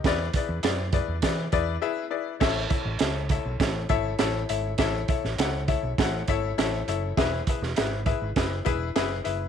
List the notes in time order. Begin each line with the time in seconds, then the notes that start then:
Already playing: G4 D#5
0.04 E2 E4 G#4 B4 D5, kick, snare, closed hi-hat
0.34 E4 G#4 B4 D5, kick, closed hi-hat
0.49 E2
0.63 F#2 E4 G#4 B4 D5, snare, closed hi-hat
0.93 E4 G#4 B4 D5, kick, closed hi-hat
1.08 E2
1.22 E3 E4 G#4 B4 D5, kick, snare, closed hi-hat
1.52 E2 E4 G#4 B4 D5, kick, closed hi-hat
1.82 E4 G#4 B4 E5
2.11 E4 G#4 B4 D5
2.40 A1 E4 A4 C#5 E5, kick, snare, crash
2.70 E4 A4 C#5 E5, kick, closed hi-hat
2.86 A1
2.99 C#2 E4 A4 C#5 E5, snare, closed hi-hat
3.29 E4 A4 C#5 E5, kick, closed hi-hat
3.45 B1
3.60 A1 E4 A4 C#5 E5, kick, snare, closed hi-hat
3.89 G#1 E4 A4 C#5 E5, kick, closed hi-hat
4.19 A1 E4 A4 C#5 E5, snare, closed hi-hat
4.49 G#1 E4 A4 C#5 E5, closed hi-hat
4.78 A1 E4 A4 C#5 E5, kick, snare, closed hi-hat
5.08 E4 A4 C#5 E5, kick, closed hi-hat
5.24 A1, snare
5.38 C#2 E4 A4 C#5 F#5, snare, closed hi-hat
5.68 E4 A4 C#5 E5, kick, closed hi-hat
5.83 B1
5.98 A1 E4 A4 C#5 F#5, kick, snare, closed hi-hat
6.28 G#1 E4 A4 C#5 E5, kick, closed hi-hat
6.58 A1 E4 A4 C#5 E5, snare, closed hi-hat
6.88 F#1 E4 A4 C#5 E5, closed hi-hat
7.17 E1 E4 G#4 B4 E5, kick, snare, closed hi-hat
7.47 E4 G#4 B4 E5, kick, closed hi-hat
7.62 E1, snare
7.76 G#1 E4 G#4 B4 E5, snare, closed hi-hat
8.06 E4 G#4 B4 E5, kick, closed hi-hat
8.22 G#1
8.36 F#1 E4 G#4 B4 E5, kick, snare, closed hi-hat
8.65 E1 E4 G#4 B4 E5, kick, closed hi-hat
8.96 F#1 E4 G#4 B4 E5, snare, closed hi-hat
9.24 F#1 E4 G#4 B4 E5, closed hi-hat